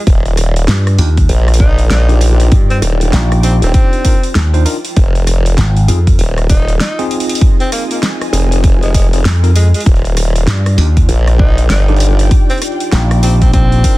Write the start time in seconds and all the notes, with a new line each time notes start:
Already playing: F4
0.07 D#1, kick, open hi-hat
0.25 open hi-hat
0.37 cross-stick, open hi-hat
0.56 open hi-hat
0.68 G2, snare, open hi-hat
0.87 cross-stick, open hi-hat
0.98 D#2 D4 D#4 F4 G4 G5, open hi-hat
1.10 D5
1.17 kick, open hi-hat
1.29 A#1, open hi-hat
1.48 cross-stick, open hi-hat
1.54 open hi-hat
1.60 D#4, kick
1.78 open hi-hat
1.90 A#1 D#4, snare, open hi-hat
2.09 D4 D#4 F4 G4, open hi-hat
2.21 open hi-hat
2.40 open hi-hat
2.52 G2, kick, open hi-hat
2.70 C4, open hi-hat
2.82 D#1, cross-stick, open hi-hat
3.01 open hi-hat
3.13 A#1, snare, open hi-hat
3.32 cross-stick, open hi-hat
3.43 C4 D4 D#4 F4 G4, open hi-hat
3.62 D#1 C4, open hi-hat
3.74 C4, kick, open hi-hat
3.93 open hi-hat
4.04 D4 D#4 F4 A#4, kick, open hi-hat
4.23 open hi-hat
4.35 D#2, snare, open hi-hat
4.54 D4 D#4 F4 C5, open hi-hat
4.65 D4 D#4 F4 A#4, open hi-hat
4.85 open hi-hat
4.97 F1, kick, open hi-hat
5.15 open hi-hat
5.27 cross-stick, open hi-hat
5.46 open hi-hat
5.58 G#1, snare, open hi-hat
5.77 open hi-hat
5.88 F2 C4 D#4 F4 G#4, open hi-hat
5.93 D#5
6.07 kick, open hi-hat
6.19 D#1, open hi-hat
6.38 cross-stick, open hi-hat
6.43 G#5
6.49 D#4, kick, open hi-hat
6.68 open hi-hat
6.80 D#4, snare, open hi-hat
6.99 C4 D#4 F4 G#4, open hi-hat
7.11 open hi-hat
7.20 open hi-hat
7.29 open hi-hat
7.35 open hi-hat
7.41 kick, open hi-hat
7.60 C4, open hi-hat
7.72 A#3, cross-stick, open hi-hat
7.91 A#3, open hi-hat
8.03 snare, open hi-hat
8.21 cross-stick, open hi-hat
8.33 F1 C4 D#4 F4 G#4, open hi-hat
8.52 open hi-hat
8.64 kick, open hi-hat
8.82 G#3, open hi-hat
8.94 G#3, kick, open hi-hat
9.13 C4 D#4 F4 G#4, open hi-hat
9.25 F2, snare, open hi-hat
9.44 C4 D#4 F4 A#4, open hi-hat
9.56 G#3, open hi-hat
9.74 G#3, open hi-hat
9.80 open hi-hat
9.86 D#1, kick, open hi-hat
9.96 open hi-hat
10.05 D5, open hi-hat
10.17 cross-stick, open hi-hat
10.27 G5
10.36 open hi-hat
10.47 G2, snare, open hi-hat
10.66 cross-stick, open hi-hat
10.78 D#2 D4 D#4 F4 G4, open hi-hat
10.97 kick, open hi-hat
11.08 A#1, open hi-hat
11.27 cross-stick, open hi-hat
11.39 D#4, kick
11.58 open hi-hat
11.70 G1 D#4, snare, open hi-hat
11.88 D4 D#4 F4 G4, open hi-hat
11.96 open hi-hat
12.00 open hi-hat
12.19 open hi-hat
12.31 kick, open hi-hat
12.50 C4, open hi-hat
12.51 open hi-hat
12.58 cross-stick, open hi-hat
12.62 open hi-hat
12.72 open hi-hat
12.80 open hi-hat
12.92 A#1, snare, open hi-hat
13.11 cross-stick, open hi-hat
13.23 C4 D4 D#4 F4 G4, open hi-hat
13.41 C4, kick, open hi-hat
13.53 C4, kick, open hi-hat
13.72 open hi-hat
13.84 D4 D#4 F4 A#4, kick, open hi-hat